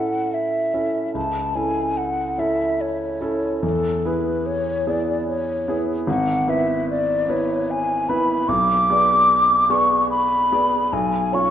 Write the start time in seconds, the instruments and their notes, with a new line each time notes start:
Already playing: grand piano A2 C#4 E4 A4, flute F#5
0.34 flute E5
0.74 grand piano C#4 E4 A4
1.14 grand piano C#2, flute A5
1.55 grand piano C#4 E4 A4, flute G#5
1.97 flute F#5
2.38 grand piano C#4 E4 A4, flute E5
2.81 flute C#5
3.21 grand piano C#4 E4 A4
3.63 grand piano E2, flute A4
4.05 grand piano B3 E4 G#4, flute B4
4.46 flute C#5
4.87 grand piano B3 E4 G#4, flute D5
5.28 flute C#5
5.68 grand piano B3 E4 G#4
6.07 grand piano G#1, flute F#5
6.48 grand piano B3 E4 B4, flute E5
6.90 flute D5
7.28 grand piano B3 E4 B4, flute C#5
7.71 flute G#5
8.09 grand piano B3 E4 B4, flute B5
8.49 grand piano B1, flute D6
8.90 grand piano B3 G#4 D5
9.70 grand piano B3 G#4 D5, flute C#6
10.10 flute B5
10.52 grand piano B3 G#4 D5
10.93 grand piano B1, flute G#5
11.32 grand piano C#4 F4 C#5, flute C#6